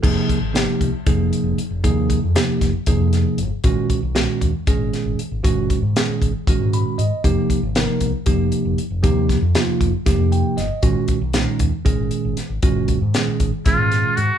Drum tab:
CC |x------|-------|-------|-------|
HH |-xxxxxx|xxxxxxx|xxxxxxx|xxxxxxx|
SD |--o----|--oo-o-|--o--o-|--o----|
BD |oo-oo--|oo-oo--|oo-oo--|oo-oo--|

CC |-------|-------|-------|-------|
HH |xxxxxxx|xxxxxxx|xxxxxxx|xxxxxxx|
SD |--o----|-oo-o-o|--o---o|--o-oo-|
BD |oo-oo--|oo-oo--|oo-oo--|oo-oo--|